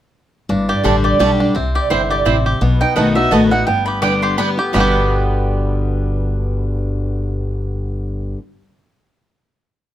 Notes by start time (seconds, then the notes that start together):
0.49 G1 G2 D4
0.69 G4 D5
0.84 A1 D3 G3 A3 D4 G4 C5 D5 A5
1.04 G4 D5
1.19 B1 D3 G3 A3 D4 G4 D5 A5
1.40 D4
1.55 C2 C3 C4
1.75 G4 D5
1.90 G1 D3 C4 E4 C5 G5
2.10 G4 D5
2.25 A1 C3 C4 E4 C5 G5
2.46 G4
2.61 B1 B2 B3
2.81 D#4 G5
2.96 B1 D#3 A3 B3 D#4 F#4 D#5 F#5 A5
3.15 B3 D#4 F#4 E5
3.31 A1 D#3 A3 B3 F#4 D#5 A5
3.51 B3 D#4 F#4 F#5
3.67 G1 G2 B3 G5
3.86 G4 B5
4.02 D3 G3 B3 D4 G4 D5 G5 D6
4.22 G4 C6
4.38 D3 G3 B3 G4 D5 G5 B5
4.57 B3 G4
4.73 G1 G2 B2 D3 G3 B3 G4 D5 G5 B5
4.78 D4 G4